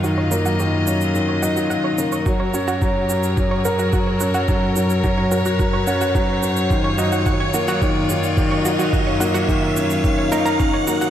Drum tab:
SH |x-xxx-xxx-xxx-xx|x-xxx-xxx-xxx-xx|x-xxx-xxx-xxx-xx|x-xxx-xxx-xxx-xx|
BD |----------------|o---o---o---o---|o---o---o---o---|o---o---o---o---|

SH |x-xxx-xxx-xxx-xx|
BD |o---o---o---o---|